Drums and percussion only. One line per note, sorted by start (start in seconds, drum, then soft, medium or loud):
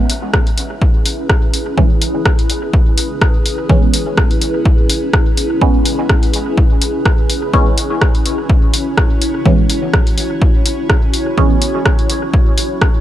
0.10 open hi-hat medium
0.34 kick loud
0.34 cross-stick medium
0.47 open hi-hat soft
0.58 open hi-hat medium
0.82 kick loud
1.06 open hi-hat medium
1.30 kick loud
1.30 cross-stick medium
1.54 open hi-hat medium
1.78 kick loud
2.02 open hi-hat medium
2.26 kick loud
2.26 cross-stick medium
2.39 open hi-hat soft
2.50 open hi-hat medium
2.73 kick loud
2.98 open hi-hat medium
3.21 kick loud
3.21 cross-stick medium
3.46 open hi-hat medium
3.69 kick loud
3.94 open hi-hat medium
4.17 kick loud
4.17 cross-stick medium
4.31 open hi-hat soft
4.41 open hi-hat medium
4.65 kick loud
4.90 open hi-hat medium
5.13 kick loud
5.13 cross-stick medium
5.37 open hi-hat medium
5.61 kick loud
5.85 open hi-hat medium
6.09 kick loud
6.09 cross-stick medium
6.23 open hi-hat soft
6.34 open hi-hat medium
6.58 kick loud
6.82 open hi-hat medium
7.06 kick loud
7.06 cross-stick medium
7.30 open hi-hat medium
7.54 kick loud
7.78 open hi-hat medium
8.02 kick loud
8.02 cross-stick medium
8.15 open hi-hat soft
8.26 open hi-hat medium
8.50 kick loud
8.74 open hi-hat medium
8.98 kick loud
8.98 cross-stick medium
9.22 open hi-hat medium
9.46 kick loud
9.70 open hi-hat medium
9.94 kick loud
9.94 cross-stick medium
10.07 open hi-hat soft
10.18 open hi-hat medium
10.42 kick loud
10.66 open hi-hat medium
10.90 kick loud
10.90 cross-stick medium
11.14 open hi-hat medium
11.38 kick loud
11.62 open hi-hat medium
11.86 kick loud
11.86 cross-stick medium
11.99 open hi-hat soft
12.10 open hi-hat medium
12.34 kick loud
12.58 open hi-hat medium
12.82 kick loud
12.82 cross-stick medium